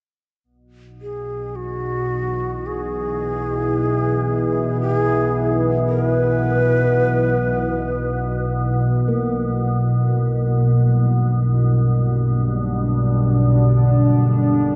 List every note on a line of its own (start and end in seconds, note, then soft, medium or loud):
0.44 14.76 B1 medium
0.44 14.76 B2 medium
0.44 11.91 E4 medium
1.02 1.57 G#4 medium
1.56 2.68 F#4 medium
1.56 9.10 B4 medium
2.66 4.81 G#4 medium
3.65 11.28 F#5 medium
4.81 5.58 G#4 medium
5.89 6.06 A#4 loud
6.06 8.53 B4 loud
9.08 14.76 G3 medium
9.08 14.76 A#3 medium
9.08 14.76 A#4 medium
10.10 14.76 D4 medium
12.73 14.76 A5 medium